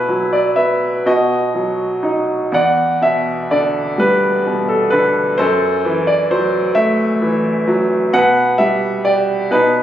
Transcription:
0, 0, Header, 1, 2, 480
1, 0, Start_track
1, 0, Key_signature, 1, "minor"
1, 0, Tempo, 969305
1, 1257, Time_signature, 6, 3, 24, 8
1, 2213, Tempo, 917431
1, 5017, End_track
2, 0, Start_track
2, 0, Title_t, "Grand piano"
2, 0, Program_c, 0, 0
2, 0, Control_c, 0, 64, 127
2, 0, Note_on_c, 0, 47, 48
2, 0, Note_on_c, 0, 64, 52
2, 0, Note_on_c, 0, 71, 70
2, 42, Note_on_c, 0, 54, 38
2, 147, Note_off_c, 0, 71, 0
2, 162, Note_on_c, 0, 74, 49
2, 277, Note_on_c, 0, 76, 58
2, 278, Note_on_c, 0, 59, 38
2, 288, Note_off_c, 0, 74, 0
2, 504, Note_off_c, 0, 47, 0
2, 506, Note_off_c, 0, 76, 0
2, 509, Note_off_c, 0, 64, 0
2, 510, Note_off_c, 0, 54, 0
2, 516, Note_off_c, 0, 59, 0
2, 524, Note_on_c, 0, 47, 47
2, 528, Note_on_c, 0, 75, 58
2, 530, Note_on_c, 0, 66, 44
2, 535, Control_c, 0, 64, 0
2, 635, Control_c, 0, 64, 127
2, 766, Note_on_c, 0, 54, 35
2, 1005, Note_on_c, 0, 63, 39
2, 1055, Note_off_c, 0, 75, 0
2, 1235, Note_off_c, 0, 47, 0
2, 1238, Note_off_c, 0, 66, 0
2, 1240, Note_off_c, 0, 54, 0
2, 1245, Note_off_c, 0, 63, 0
2, 1247, Note_on_c, 0, 40, 49
2, 1259, Note_on_c, 0, 78, 65
2, 1261, Note_on_c, 0, 74, 49
2, 1264, Control_c, 0, 64, 0
2, 1342, Control_c, 0, 64, 127
2, 1493, Note_on_c, 0, 47, 35
2, 1498, Note_on_c, 0, 76, 59
2, 1507, Note_off_c, 0, 78, 0
2, 1722, Note_off_c, 0, 76, 0
2, 1731, Note_off_c, 0, 74, 0
2, 1738, Note_on_c, 0, 74, 58
2, 1740, Note_on_c, 0, 50, 36
2, 1970, Note_on_c, 0, 55, 41
2, 1979, Note_on_c, 0, 71, 62
2, 1984, Note_off_c, 0, 74, 0
2, 2203, Note_off_c, 0, 47, 0
2, 2210, Note_on_c, 0, 47, 36
2, 2326, Note_on_c, 0, 69, 47
2, 2348, Note_off_c, 0, 71, 0
2, 2441, Note_on_c, 0, 71, 60
2, 2446, Note_off_c, 0, 50, 0
2, 2454, Note_on_c, 0, 50, 42
2, 2457, Note_off_c, 0, 69, 0
2, 2673, Note_off_c, 0, 40, 0
2, 2675, Note_off_c, 0, 55, 0
2, 2684, Note_off_c, 0, 47, 0
2, 2688, Note_on_c, 0, 72, 68
2, 2690, Note_off_c, 0, 50, 0
2, 2694, Note_on_c, 0, 42, 56
2, 2697, Note_on_c, 0, 69, 52
2, 2699, Note_off_c, 0, 71, 0
2, 2705, Control_c, 0, 64, 0
2, 2814, Control_c, 0, 64, 127
2, 2936, Note_on_c, 0, 52, 44
2, 3052, Note_on_c, 0, 74, 58
2, 3064, Note_off_c, 0, 72, 0
2, 3166, Note_off_c, 0, 74, 0
2, 3176, Note_on_c, 0, 54, 38
2, 3176, Note_on_c, 0, 72, 64
2, 3393, Note_off_c, 0, 69, 0
2, 3406, Note_on_c, 0, 76, 64
2, 3408, Note_on_c, 0, 57, 46
2, 3422, Note_off_c, 0, 72, 0
2, 3642, Note_off_c, 0, 52, 0
2, 3649, Note_on_c, 0, 52, 39
2, 3883, Note_off_c, 0, 54, 0
2, 3891, Note_on_c, 0, 54, 51
2, 3926, Note_off_c, 0, 76, 0
2, 4107, Note_off_c, 0, 57, 0
2, 4108, Note_off_c, 0, 42, 0
2, 4116, Note_off_c, 0, 52, 0
2, 4124, Note_off_c, 0, 54, 0
2, 4131, Note_on_c, 0, 47, 62
2, 4131, Note_on_c, 0, 78, 81
2, 4138, Control_c, 0, 64, 0
2, 4141, Note_on_c, 0, 71, 58
2, 4234, Control_c, 0, 64, 127
2, 4365, Note_on_c, 0, 76, 71
2, 4368, Note_on_c, 0, 55, 49
2, 4379, Note_off_c, 0, 78, 0
2, 4608, Note_on_c, 0, 67, 47
2, 4608, Note_on_c, 0, 74, 69
2, 4616, Note_off_c, 0, 76, 0
2, 4830, Note_off_c, 0, 47, 0
2, 4835, Note_off_c, 0, 55, 0
2, 4835, Note_off_c, 0, 71, 0
2, 4843, Note_off_c, 0, 67, 0
2, 4850, Note_on_c, 0, 47, 56
2, 4853, Note_on_c, 0, 71, 67
2, 4857, Note_off_c, 0, 74, 0
2, 4858, Control_c, 0, 64, 0
2, 4860, Note_on_c, 0, 63, 48
2, 4951, Control_c, 0, 64, 127
2, 5017, Note_off_c, 0, 47, 0
2, 5017, Note_off_c, 0, 63, 0
2, 5017, Note_off_c, 0, 71, 0
2, 5017, End_track
0, 0, End_of_file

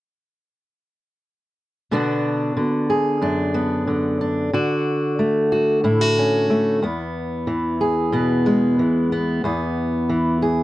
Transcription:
0, 0, Header, 1, 2, 480
1, 0, Start_track
1, 0, Tempo, 654308
1, 1406, Time_signature, 4, 2, 24, 8
1, 7800, End_track
2, 0, Start_track
2, 0, Title_t, "Steel-string acoustic guitar"
2, 0, Program_c, 0, 25
2, 1404, Note_on_c, 0, 47, 53
2, 1407, Note_on_c, 0, 50, 47
2, 1414, Note_on_c, 0, 59, 46
2, 1417, Note_on_c, 0, 62, 44
2, 1423, Note_on_c, 0, 66, 50
2, 1873, Note_off_c, 0, 50, 0
2, 1882, Note_on_c, 0, 50, 50
2, 1885, Note_off_c, 0, 47, 0
2, 2123, Note_off_c, 0, 66, 0
2, 2126, Note_on_c, 0, 68, 47
2, 2355, Note_off_c, 0, 62, 0
2, 2359, Note_on_c, 0, 42, 48
2, 2364, Note_on_c, 0, 62, 50
2, 2590, Note_off_c, 0, 59, 0
2, 2599, Note_on_c, 0, 59, 44
2, 2833, Note_off_c, 0, 50, 0
2, 2842, Note_on_c, 0, 50, 46
2, 3079, Note_off_c, 0, 62, 0
2, 3088, Note_on_c, 0, 62, 45
2, 3294, Note_off_c, 0, 42, 0
2, 3294, Note_off_c, 0, 59, 0
2, 3298, Note_off_c, 0, 68, 0
2, 3299, Note_off_c, 0, 62, 0
2, 3317, Note_off_c, 0, 50, 0
2, 3326, Note_on_c, 0, 50, 56
2, 3332, Note_on_c, 0, 66, 53
2, 3807, Note_on_c, 0, 57, 50
2, 4040, Note_off_c, 0, 66, 0
2, 4049, Note_on_c, 0, 66, 46
2, 4283, Note_off_c, 0, 66, 0
2, 4283, Note_on_c, 0, 45, 52
2, 4285, Note_on_c, 0, 64, 51
2, 4409, Note_off_c, 0, 64, 0
2, 4409, Note_on_c, 0, 66, 45
2, 4538, Note_on_c, 0, 61, 43
2, 4759, Note_off_c, 0, 57, 0
2, 4768, Note_on_c, 0, 57, 51
2, 4979, Note_off_c, 0, 57, 0
2, 4984, Note_off_c, 0, 61, 0
2, 5005, Note_off_c, 0, 45, 0
2, 5006, Note_on_c, 0, 40, 54
2, 5007, Note_off_c, 0, 50, 0
2, 5008, Note_off_c, 0, 66, 0
2, 5013, Note_on_c, 0, 59, 46
2, 5481, Note_on_c, 0, 52, 49
2, 5728, Note_on_c, 0, 68, 50
2, 5960, Note_on_c, 0, 47, 52
2, 5962, Note_off_c, 0, 59, 0
2, 5965, Note_on_c, 0, 59, 48
2, 6207, Note_on_c, 0, 56, 49
2, 6440, Note_off_c, 0, 52, 0
2, 6443, Note_off_c, 0, 47, 0
2, 6449, Note_on_c, 0, 52, 51
2, 6689, Note_off_c, 0, 59, 0
2, 6692, Note_on_c, 0, 59, 50
2, 6897, Note_off_c, 0, 56, 0
2, 6898, Note_off_c, 0, 68, 0
2, 6899, Note_off_c, 0, 52, 0
2, 6916, Note_off_c, 0, 40, 0
2, 6924, Note_on_c, 0, 40, 58
2, 6929, Note_off_c, 0, 59, 0
2, 6932, Note_on_c, 0, 59, 48
2, 7405, Note_on_c, 0, 52, 50
2, 7646, Note_on_c, 0, 68, 50
2, 7800, Note_off_c, 0, 40, 0
2, 7800, Note_off_c, 0, 52, 0
2, 7800, Note_off_c, 0, 59, 0
2, 7800, Note_off_c, 0, 68, 0
2, 7800, End_track
0, 0, End_of_file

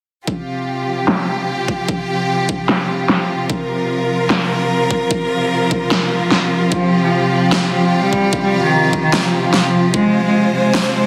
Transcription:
0, 0, Header, 1, 4, 480
1, 0, Start_track
1, 0, Key_signature, -4, "minor"
1, 0, Tempo, 402685
1, 328, Time_signature, 4, 2, 24, 8
1, 13192, End_track
2, 0, Start_track
2, 0, Title_t, "String section"
2, 0, Program_c, 0, 48
2, 327, Note_on_c, 0, 48, 66
2, 327, Note_on_c, 0, 53, 64
2, 327, Note_on_c, 0, 65, 64
2, 327, Note_on_c, 0, 67, 76
2, 4154, Note_off_c, 0, 67, 0
2, 4167, Note_on_c, 0, 70, 80
2, 7994, Note_off_c, 0, 70, 0
2, 8007, Note_on_c, 0, 67, 80
2, 11834, Note_off_c, 0, 67, 0
2, 11846, Note_on_c, 0, 72, 81
2, 13192, Note_off_c, 0, 48, 0
2, 13192, Note_off_c, 0, 53, 0
2, 13192, Note_off_c, 0, 65, 0
2, 13192, Note_off_c, 0, 72, 0
2, 13192, End_track
3, 0, Start_track
3, 0, Title_t, "Cello"
3, 0, Program_c, 1, 42
3, 8007, Note_on_c, 1, 53, 91
3, 8327, Note_off_c, 1, 53, 0
3, 8375, Note_on_c, 1, 53, 88
3, 8685, Note_off_c, 1, 53, 0
3, 8727, Note_on_c, 1, 53, 86
3, 9151, Note_off_c, 1, 53, 0
3, 9207, Note_on_c, 1, 53, 89
3, 9527, Note_off_c, 1, 53, 0
3, 9576, Note_on_c, 1, 55, 90
3, 9991, Note_off_c, 1, 55, 0
3, 10055, Note_on_c, 1, 55, 84
3, 10263, Note_off_c, 1, 55, 0
3, 10295, Note_on_c, 1, 51, 88
3, 10711, Note_off_c, 1, 51, 0
3, 10775, Note_on_c, 1, 51, 83
3, 10983, Note_off_c, 1, 51, 0
3, 11015, Note_on_c, 1, 53, 79
3, 11223, Note_off_c, 1, 53, 0
3, 11255, Note_on_c, 1, 53, 84
3, 11463, Note_off_c, 1, 53, 0
3, 11495, Note_on_c, 1, 53, 89
3, 11805, Note_off_c, 1, 53, 0
3, 11847, Note_on_c, 1, 56, 97
3, 12167, Note_off_c, 1, 56, 0
3, 12215, Note_on_c, 1, 56, 92
3, 12525, Note_off_c, 1, 56, 0
3, 12567, Note_on_c, 1, 56, 89
3, 12991, Note_off_c, 1, 56, 0
3, 13046, Note_on_c, 1, 56, 89
3, 13192, Note_off_c, 1, 56, 0
3, 13192, End_track
4, 0, Start_track
4, 0, Title_t, "Drums"
4, 327, Note_on_c, 9, 36, 103
4, 447, Note_off_c, 9, 36, 0
4, 1287, Note_on_c, 9, 38, 100
4, 1407, Note_off_c, 9, 38, 0
4, 2007, Note_on_c, 9, 36, 56
4, 2127, Note_off_c, 9, 36, 0
4, 2247, Note_on_c, 9, 36, 104
4, 2366, Note_off_c, 9, 36, 0
4, 2967, Note_on_c, 9, 36, 96
4, 3087, Note_off_c, 9, 36, 0
4, 3207, Note_on_c, 9, 38, 105
4, 3327, Note_off_c, 9, 38, 0
4, 3687, Note_on_c, 9, 38, 61
4, 3807, Note_off_c, 9, 38, 0
4, 4167, Note_on_c, 9, 36, 108
4, 4287, Note_off_c, 9, 36, 0
4, 5127, Note_on_c, 9, 38, 112
4, 5246, Note_off_c, 9, 38, 0
4, 5847, Note_on_c, 9, 36, 58
4, 5966, Note_off_c, 9, 36, 0
4, 6087, Note_on_c, 9, 36, 108
4, 6206, Note_off_c, 9, 36, 0
4, 6807, Note_on_c, 9, 36, 94
4, 6926, Note_off_c, 9, 36, 0
4, 7047, Note_on_c, 9, 38, 107
4, 7167, Note_off_c, 9, 38, 0
4, 7527, Note_on_c, 9, 38, 63
4, 7646, Note_off_c, 9, 38, 0
4, 8007, Note_on_c, 9, 36, 104
4, 8126, Note_off_c, 9, 36, 0
4, 8967, Note_on_c, 9, 38, 109
4, 9086, Note_off_c, 9, 38, 0
4, 9687, Note_on_c, 9, 36, 56
4, 9806, Note_off_c, 9, 36, 0
4, 9927, Note_on_c, 9, 36, 100
4, 10046, Note_off_c, 9, 36, 0
4, 10647, Note_on_c, 9, 36, 90
4, 10766, Note_off_c, 9, 36, 0
4, 10887, Note_on_c, 9, 38, 105
4, 11006, Note_off_c, 9, 38, 0
4, 11367, Note_on_c, 9, 38, 57
4, 11486, Note_off_c, 9, 38, 0
4, 11847, Note_on_c, 9, 36, 100
4, 11966, Note_off_c, 9, 36, 0
4, 12807, Note_on_c, 9, 38, 104
4, 12926, Note_off_c, 9, 38, 0
4, 13192, End_track
0, 0, End_of_file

